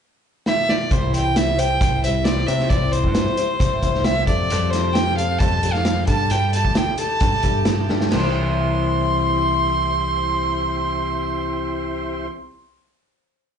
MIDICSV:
0, 0, Header, 1, 6, 480
1, 0, Start_track
1, 0, Key_signature, 0, "major"
1, 0, Tempo, 449438
1, 981, Time_signature, 4, 2, 24, 8
1, 6739, Tempo, 458716
1, 14346, End_track
2, 0, Start_track
2, 0, Title_t, "Fiddle"
2, 0, Program_c, 0, 110
2, 498, Note_on_c, 0, 76, 84
2, 745, Note_on_c, 0, 74, 73
2, 761, Note_off_c, 0, 76, 0
2, 988, Note_on_c, 0, 72, 76
2, 1004, Note_off_c, 0, 74, 0
2, 1218, Note_off_c, 0, 72, 0
2, 1225, Note_on_c, 0, 79, 80
2, 1464, Note_on_c, 0, 76, 80
2, 1480, Note_off_c, 0, 79, 0
2, 1702, Note_on_c, 0, 79, 93
2, 1718, Note_off_c, 0, 76, 0
2, 2169, Note_off_c, 0, 79, 0
2, 2175, Note_on_c, 0, 76, 72
2, 2396, Note_on_c, 0, 74, 82
2, 2412, Note_off_c, 0, 76, 0
2, 2634, Note_on_c, 0, 76, 79
2, 2650, Note_off_c, 0, 74, 0
2, 2877, Note_on_c, 0, 74, 76
2, 2893, Note_off_c, 0, 76, 0
2, 3117, Note_on_c, 0, 72, 86
2, 3133, Note_off_c, 0, 74, 0
2, 4321, Note_on_c, 0, 76, 88
2, 4337, Note_off_c, 0, 72, 0
2, 4556, Note_off_c, 0, 76, 0
2, 4562, Note_on_c, 0, 74, 79
2, 5023, Note_on_c, 0, 72, 78
2, 5039, Note_off_c, 0, 74, 0
2, 5264, Note_on_c, 0, 79, 94
2, 5280, Note_off_c, 0, 72, 0
2, 5512, Note_off_c, 0, 79, 0
2, 5518, Note_on_c, 0, 77, 93
2, 5753, Note_on_c, 0, 81, 94
2, 5769, Note_off_c, 0, 77, 0
2, 6121, Note_on_c, 0, 77, 96
2, 6137, Note_off_c, 0, 81, 0
2, 6472, Note_off_c, 0, 77, 0
2, 6478, Note_on_c, 0, 81, 89
2, 6736, Note_on_c, 0, 79, 92
2, 6752, Note_off_c, 0, 81, 0
2, 6972, Note_off_c, 0, 79, 0
2, 6978, Note_on_c, 0, 81, 86
2, 7217, Note_on_c, 0, 79, 93
2, 7233, Note_off_c, 0, 81, 0
2, 7451, Note_off_c, 0, 79, 0
2, 7457, Note_on_c, 0, 81, 94
2, 8370, Note_off_c, 0, 81, 0
2, 8645, Note_on_c, 0, 84, 83
2, 12984, Note_off_c, 0, 84, 0
2, 14346, End_track
3, 0, Start_track
3, 0, Title_t, "Tonewheel organ"
3, 0, Program_c, 1, 16
3, 4815, Note_on_c, 1, 69, 63
3, 4816, Note_on_c, 1, 67, 65
3, 4828, Note_on_c, 1, 65, 66
3, 6468, Note_off_c, 1, 67, 0
3, 6469, Note_on_c, 1, 62, 61
3, 6470, Note_off_c, 1, 69, 0
3, 6481, Note_on_c, 1, 67, 63
3, 6483, Note_on_c, 1, 69, 61
3, 6490, Note_off_c, 1, 65, 0
3, 8614, Note_off_c, 1, 62, 0
3, 8620, Note_off_c, 1, 67, 0
3, 8621, Note_off_c, 1, 69, 0
3, 8633, Note_on_c, 1, 64, 63
3, 8641, Note_on_c, 1, 72, 65
3, 8644, Note_on_c, 1, 67, 64
3, 12972, Note_off_c, 1, 64, 0
3, 12979, Note_off_c, 1, 72, 0
3, 12983, Note_off_c, 1, 67, 0
3, 14346, End_track
4, 0, Start_track
4, 0, Title_t, "Twelve-string acoustic guitar"
4, 0, Program_c, 2, 25
4, 968, Note_on_c, 2, 52, 61
4, 970, Note_on_c, 2, 48, 60
4, 981, Note_on_c, 2, 55, 73
4, 985, Note_on_c, 2, 60, 65
4, 986, Note_on_c, 2, 64, 73
4, 987, Note_on_c, 2, 72, 69
4, 1687, Note_off_c, 2, 72, 0
4, 1691, Note_on_c, 2, 72, 55
4, 1694, Note_off_c, 2, 64, 0
4, 1695, Note_off_c, 2, 52, 0
4, 1696, Note_off_c, 2, 48, 0
4, 1706, Note_on_c, 2, 64, 53
4, 1712, Note_off_c, 2, 60, 0
4, 1716, Note_on_c, 2, 60, 49
4, 1719, Note_off_c, 2, 55, 0
4, 1723, Note_on_c, 2, 55, 38
4, 1934, Note_off_c, 2, 55, 0
4, 1936, Note_off_c, 2, 72, 0
4, 1944, Note_off_c, 2, 64, 0
4, 1945, Note_off_c, 2, 60, 0
4, 1946, Note_on_c, 2, 55, 49
4, 1957, Note_on_c, 2, 60, 64
4, 1966, Note_on_c, 2, 64, 65
4, 1972, Note_on_c, 2, 72, 59
4, 2163, Note_off_c, 2, 72, 0
4, 2172, Note_off_c, 2, 64, 0
4, 2176, Note_on_c, 2, 72, 47
4, 2183, Note_off_c, 2, 55, 0
4, 2185, Note_on_c, 2, 64, 46
4, 2189, Note_off_c, 2, 60, 0
4, 2202, Note_on_c, 2, 60, 37
4, 2206, Note_on_c, 2, 55, 39
4, 2391, Note_off_c, 2, 55, 0
4, 2404, Note_on_c, 2, 55, 51
4, 2406, Note_off_c, 2, 60, 0
4, 2414, Note_off_c, 2, 64, 0
4, 2418, Note_off_c, 2, 72, 0
4, 2418, Note_on_c, 2, 60, 67
4, 2427, Note_on_c, 2, 64, 59
4, 2432, Note_on_c, 2, 72, 68
4, 2636, Note_off_c, 2, 72, 0
4, 2644, Note_off_c, 2, 64, 0
4, 2649, Note_on_c, 2, 72, 57
4, 2652, Note_off_c, 2, 55, 0
4, 2654, Note_off_c, 2, 60, 0
4, 2657, Note_on_c, 2, 64, 54
4, 2666, Note_on_c, 2, 60, 44
4, 2678, Note_on_c, 2, 55, 44
4, 2893, Note_off_c, 2, 55, 0
4, 2894, Note_off_c, 2, 72, 0
4, 2896, Note_on_c, 2, 48, 64
4, 2897, Note_off_c, 2, 60, 0
4, 2897, Note_off_c, 2, 64, 0
4, 2903, Note_on_c, 2, 52, 68
4, 2905, Note_on_c, 2, 55, 70
4, 2909, Note_on_c, 2, 60, 66
4, 2915, Note_on_c, 2, 64, 75
4, 2923, Note_on_c, 2, 72, 74
4, 3594, Note_off_c, 2, 72, 0
4, 3598, Note_on_c, 2, 72, 53
4, 3599, Note_off_c, 2, 64, 0
4, 3612, Note_on_c, 2, 64, 44
4, 3615, Note_off_c, 2, 48, 0
4, 3616, Note_off_c, 2, 60, 0
4, 3619, Note_off_c, 2, 52, 0
4, 3620, Note_on_c, 2, 60, 46
4, 3625, Note_off_c, 2, 55, 0
4, 3630, Note_on_c, 2, 55, 44
4, 3821, Note_off_c, 2, 55, 0
4, 3826, Note_off_c, 2, 60, 0
4, 3834, Note_on_c, 2, 55, 65
4, 3838, Note_off_c, 2, 64, 0
4, 3839, Note_on_c, 2, 60, 68
4, 3847, Note_off_c, 2, 72, 0
4, 3850, Note_on_c, 2, 64, 75
4, 3857, Note_on_c, 2, 72, 79
4, 4068, Note_off_c, 2, 72, 0
4, 4078, Note_off_c, 2, 64, 0
4, 4081, Note_on_c, 2, 72, 55
4, 4084, Note_off_c, 2, 55, 0
4, 4086, Note_off_c, 2, 60, 0
4, 4091, Note_on_c, 2, 64, 54
4, 4101, Note_on_c, 2, 60, 41
4, 4116, Note_on_c, 2, 55, 42
4, 4304, Note_off_c, 2, 55, 0
4, 4316, Note_off_c, 2, 60, 0
4, 4317, Note_on_c, 2, 55, 58
4, 4323, Note_off_c, 2, 64, 0
4, 4327, Note_off_c, 2, 72, 0
4, 4329, Note_on_c, 2, 60, 58
4, 4336, Note_on_c, 2, 64, 68
4, 4346, Note_on_c, 2, 72, 66
4, 4556, Note_off_c, 2, 72, 0
4, 4561, Note_on_c, 2, 69, 53
4, 4565, Note_off_c, 2, 55, 0
4, 4571, Note_off_c, 2, 60, 0
4, 4573, Note_off_c, 2, 64, 0
4, 4577, Note_on_c, 2, 67, 49
4, 4588, Note_on_c, 2, 60, 45
4, 4805, Note_off_c, 2, 60, 0
4, 4807, Note_off_c, 2, 69, 0
4, 4807, Note_on_c, 2, 53, 68
4, 4810, Note_on_c, 2, 55, 61
4, 4813, Note_off_c, 2, 67, 0
4, 4818, Note_on_c, 2, 60, 70
4, 4826, Note_on_c, 2, 67, 77
4, 4828, Note_on_c, 2, 69, 73
4, 5525, Note_off_c, 2, 69, 0
4, 5529, Note_on_c, 2, 69, 53
4, 5531, Note_off_c, 2, 53, 0
4, 5536, Note_off_c, 2, 60, 0
4, 5542, Note_off_c, 2, 67, 0
4, 5547, Note_on_c, 2, 67, 43
4, 5558, Note_on_c, 2, 60, 46
4, 5561, Note_off_c, 2, 55, 0
4, 5768, Note_off_c, 2, 60, 0
4, 5770, Note_on_c, 2, 55, 57
4, 5773, Note_off_c, 2, 69, 0
4, 5781, Note_off_c, 2, 67, 0
4, 5781, Note_on_c, 2, 60, 59
4, 5795, Note_on_c, 2, 67, 64
4, 5800, Note_on_c, 2, 69, 69
4, 5991, Note_off_c, 2, 69, 0
4, 6004, Note_on_c, 2, 69, 50
4, 6008, Note_off_c, 2, 67, 0
4, 6014, Note_off_c, 2, 55, 0
4, 6019, Note_off_c, 2, 60, 0
4, 6021, Note_on_c, 2, 67, 44
4, 6036, Note_on_c, 2, 60, 38
4, 6247, Note_on_c, 2, 55, 58
4, 6250, Note_off_c, 2, 60, 0
4, 6251, Note_off_c, 2, 69, 0
4, 6260, Note_off_c, 2, 67, 0
4, 6263, Note_on_c, 2, 60, 61
4, 6272, Note_on_c, 2, 67, 65
4, 6284, Note_on_c, 2, 69, 68
4, 6474, Note_off_c, 2, 69, 0
4, 6487, Note_on_c, 2, 69, 54
4, 6494, Note_off_c, 2, 55, 0
4, 6494, Note_off_c, 2, 67, 0
4, 6502, Note_off_c, 2, 60, 0
4, 6507, Note_on_c, 2, 67, 47
4, 6522, Note_on_c, 2, 62, 41
4, 6732, Note_off_c, 2, 62, 0
4, 6735, Note_off_c, 2, 69, 0
4, 6736, Note_off_c, 2, 67, 0
4, 6737, Note_on_c, 2, 55, 68
4, 6740, Note_on_c, 2, 57, 66
4, 6744, Note_on_c, 2, 62, 65
4, 6748, Note_on_c, 2, 67, 73
4, 6755, Note_on_c, 2, 69, 79
4, 7435, Note_off_c, 2, 69, 0
4, 7447, Note_on_c, 2, 69, 52
4, 7450, Note_off_c, 2, 67, 0
4, 7453, Note_off_c, 2, 55, 0
4, 7454, Note_off_c, 2, 57, 0
4, 7456, Note_off_c, 2, 62, 0
4, 7463, Note_on_c, 2, 67, 46
4, 7480, Note_on_c, 2, 62, 45
4, 7675, Note_off_c, 2, 62, 0
4, 7679, Note_on_c, 2, 57, 62
4, 7685, Note_off_c, 2, 67, 0
4, 7688, Note_on_c, 2, 62, 56
4, 7690, Note_off_c, 2, 69, 0
4, 7697, Note_on_c, 2, 67, 61
4, 7707, Note_on_c, 2, 69, 61
4, 7899, Note_off_c, 2, 69, 0
4, 7912, Note_on_c, 2, 69, 48
4, 7918, Note_off_c, 2, 67, 0
4, 7925, Note_off_c, 2, 57, 0
4, 7929, Note_off_c, 2, 62, 0
4, 7931, Note_on_c, 2, 67, 45
4, 7946, Note_on_c, 2, 62, 41
4, 8151, Note_off_c, 2, 62, 0
4, 8152, Note_on_c, 2, 57, 57
4, 8160, Note_off_c, 2, 67, 0
4, 8161, Note_off_c, 2, 69, 0
4, 8164, Note_on_c, 2, 62, 64
4, 8172, Note_on_c, 2, 67, 69
4, 8183, Note_on_c, 2, 69, 68
4, 8379, Note_off_c, 2, 69, 0
4, 8392, Note_on_c, 2, 69, 65
4, 8395, Note_off_c, 2, 67, 0
4, 8401, Note_off_c, 2, 57, 0
4, 8407, Note_off_c, 2, 62, 0
4, 8408, Note_on_c, 2, 67, 53
4, 8420, Note_on_c, 2, 62, 52
4, 8599, Note_on_c, 2, 48, 73
4, 8629, Note_on_c, 2, 52, 71
4, 8641, Note_off_c, 2, 69, 0
4, 8649, Note_off_c, 2, 67, 0
4, 8655, Note_off_c, 2, 62, 0
4, 8655, Note_on_c, 2, 55, 69
4, 8678, Note_on_c, 2, 60, 76
4, 8700, Note_on_c, 2, 64, 82
4, 8721, Note_on_c, 2, 72, 81
4, 12979, Note_off_c, 2, 48, 0
4, 13010, Note_off_c, 2, 52, 0
4, 13036, Note_off_c, 2, 55, 0
4, 13058, Note_off_c, 2, 60, 0
4, 13080, Note_off_c, 2, 64, 0
4, 13102, Note_off_c, 2, 72, 0
4, 14346, End_track
5, 0, Start_track
5, 0, Title_t, "Picked electric bass"
5, 0, Program_c, 3, 34
5, 970, Note_on_c, 3, 36, 82
5, 1893, Note_off_c, 3, 36, 0
5, 1932, Note_on_c, 3, 36, 81
5, 2615, Note_off_c, 3, 36, 0
5, 2648, Note_on_c, 3, 48, 80
5, 2880, Note_off_c, 3, 48, 0
5, 2887, Note_on_c, 3, 36, 85
5, 3247, Note_on_c, 3, 43, 80
5, 3263, Note_off_c, 3, 36, 0
5, 3478, Note_off_c, 3, 43, 0
5, 3845, Note_on_c, 3, 36, 81
5, 3963, Note_off_c, 3, 36, 0
5, 4083, Note_on_c, 3, 36, 79
5, 4541, Note_off_c, 3, 36, 0
5, 4561, Note_on_c, 3, 41, 78
5, 4794, Note_off_c, 3, 41, 0
5, 4824, Note_on_c, 3, 41, 87
5, 5738, Note_off_c, 3, 41, 0
5, 5772, Note_on_c, 3, 41, 86
5, 6458, Note_off_c, 3, 41, 0
5, 6489, Note_on_c, 3, 43, 82
5, 6723, Note_off_c, 3, 43, 0
5, 6738, Note_on_c, 3, 43, 77
5, 7086, Note_off_c, 3, 43, 0
5, 7086, Note_on_c, 3, 38, 80
5, 7316, Note_off_c, 3, 38, 0
5, 7684, Note_on_c, 3, 43, 85
5, 7801, Note_off_c, 3, 43, 0
5, 7920, Note_on_c, 3, 43, 74
5, 8378, Note_off_c, 3, 43, 0
5, 8404, Note_on_c, 3, 43, 81
5, 8634, Note_off_c, 3, 43, 0
5, 8644, Note_on_c, 3, 36, 80
5, 12983, Note_off_c, 3, 36, 0
5, 14346, End_track
6, 0, Start_track
6, 0, Title_t, "Drums"
6, 494, Note_on_c, 9, 38, 61
6, 600, Note_off_c, 9, 38, 0
6, 737, Note_on_c, 9, 38, 75
6, 844, Note_off_c, 9, 38, 0
6, 973, Note_on_c, 9, 36, 93
6, 973, Note_on_c, 9, 42, 71
6, 1080, Note_off_c, 9, 36, 0
6, 1080, Note_off_c, 9, 42, 0
6, 1217, Note_on_c, 9, 42, 62
6, 1324, Note_off_c, 9, 42, 0
6, 1454, Note_on_c, 9, 42, 84
6, 1455, Note_on_c, 9, 38, 97
6, 1561, Note_off_c, 9, 42, 0
6, 1562, Note_off_c, 9, 38, 0
6, 1694, Note_on_c, 9, 42, 61
6, 1801, Note_off_c, 9, 42, 0
6, 1932, Note_on_c, 9, 36, 112
6, 1933, Note_on_c, 9, 42, 84
6, 2039, Note_off_c, 9, 36, 0
6, 2040, Note_off_c, 9, 42, 0
6, 2176, Note_on_c, 9, 42, 66
6, 2283, Note_off_c, 9, 42, 0
6, 2405, Note_on_c, 9, 42, 81
6, 2406, Note_on_c, 9, 38, 102
6, 2512, Note_off_c, 9, 42, 0
6, 2513, Note_off_c, 9, 38, 0
6, 2651, Note_on_c, 9, 42, 57
6, 2758, Note_off_c, 9, 42, 0
6, 2771, Note_on_c, 9, 38, 28
6, 2878, Note_off_c, 9, 38, 0
6, 2886, Note_on_c, 9, 42, 67
6, 2887, Note_on_c, 9, 36, 98
6, 2993, Note_off_c, 9, 42, 0
6, 2994, Note_off_c, 9, 36, 0
6, 3126, Note_on_c, 9, 42, 57
6, 3233, Note_off_c, 9, 42, 0
6, 3244, Note_on_c, 9, 36, 60
6, 3351, Note_off_c, 9, 36, 0
6, 3360, Note_on_c, 9, 42, 73
6, 3361, Note_on_c, 9, 38, 100
6, 3467, Note_off_c, 9, 42, 0
6, 3468, Note_off_c, 9, 38, 0
6, 3603, Note_on_c, 9, 42, 62
6, 3710, Note_off_c, 9, 42, 0
6, 3846, Note_on_c, 9, 36, 107
6, 3849, Note_on_c, 9, 42, 83
6, 3953, Note_off_c, 9, 36, 0
6, 3955, Note_off_c, 9, 42, 0
6, 4086, Note_on_c, 9, 36, 74
6, 4086, Note_on_c, 9, 42, 58
6, 4193, Note_off_c, 9, 36, 0
6, 4193, Note_off_c, 9, 42, 0
6, 4214, Note_on_c, 9, 38, 31
6, 4319, Note_on_c, 9, 42, 74
6, 4320, Note_off_c, 9, 38, 0
6, 4320, Note_on_c, 9, 38, 104
6, 4426, Note_off_c, 9, 42, 0
6, 4427, Note_off_c, 9, 38, 0
6, 4564, Note_on_c, 9, 36, 84
6, 4564, Note_on_c, 9, 42, 54
6, 4671, Note_off_c, 9, 36, 0
6, 4671, Note_off_c, 9, 42, 0
6, 4810, Note_on_c, 9, 42, 76
6, 4916, Note_off_c, 9, 42, 0
6, 5051, Note_on_c, 9, 42, 55
6, 5052, Note_on_c, 9, 38, 30
6, 5158, Note_off_c, 9, 42, 0
6, 5159, Note_off_c, 9, 38, 0
6, 5290, Note_on_c, 9, 42, 76
6, 5291, Note_on_c, 9, 38, 107
6, 5396, Note_off_c, 9, 42, 0
6, 5398, Note_off_c, 9, 38, 0
6, 5536, Note_on_c, 9, 42, 61
6, 5643, Note_off_c, 9, 42, 0
6, 5768, Note_on_c, 9, 42, 80
6, 5771, Note_on_c, 9, 36, 110
6, 5875, Note_off_c, 9, 42, 0
6, 5878, Note_off_c, 9, 36, 0
6, 6012, Note_on_c, 9, 42, 63
6, 6119, Note_off_c, 9, 42, 0
6, 6132, Note_on_c, 9, 38, 29
6, 6239, Note_off_c, 9, 38, 0
6, 6247, Note_on_c, 9, 42, 83
6, 6248, Note_on_c, 9, 38, 97
6, 6354, Note_off_c, 9, 42, 0
6, 6355, Note_off_c, 9, 38, 0
6, 6486, Note_on_c, 9, 42, 59
6, 6492, Note_on_c, 9, 36, 88
6, 6593, Note_off_c, 9, 42, 0
6, 6599, Note_off_c, 9, 36, 0
6, 6728, Note_on_c, 9, 42, 77
6, 6832, Note_off_c, 9, 42, 0
6, 6970, Note_on_c, 9, 42, 61
6, 7075, Note_off_c, 9, 42, 0
6, 7091, Note_on_c, 9, 36, 65
6, 7196, Note_off_c, 9, 36, 0
6, 7203, Note_on_c, 9, 42, 82
6, 7204, Note_on_c, 9, 38, 106
6, 7307, Note_off_c, 9, 42, 0
6, 7308, Note_off_c, 9, 38, 0
6, 7437, Note_on_c, 9, 42, 63
6, 7542, Note_off_c, 9, 42, 0
6, 7673, Note_on_c, 9, 42, 77
6, 7680, Note_on_c, 9, 36, 116
6, 7778, Note_off_c, 9, 42, 0
6, 7785, Note_off_c, 9, 36, 0
6, 7908, Note_on_c, 9, 42, 62
6, 7918, Note_on_c, 9, 36, 74
6, 8013, Note_off_c, 9, 42, 0
6, 8022, Note_off_c, 9, 36, 0
6, 8145, Note_on_c, 9, 42, 80
6, 8146, Note_on_c, 9, 38, 107
6, 8249, Note_off_c, 9, 42, 0
6, 8250, Note_off_c, 9, 38, 0
6, 8395, Note_on_c, 9, 38, 50
6, 8500, Note_off_c, 9, 38, 0
6, 8514, Note_on_c, 9, 38, 71
6, 8619, Note_off_c, 9, 38, 0
6, 8629, Note_on_c, 9, 49, 75
6, 8630, Note_on_c, 9, 38, 89
6, 8734, Note_off_c, 9, 49, 0
6, 8735, Note_off_c, 9, 38, 0
6, 14346, End_track
0, 0, End_of_file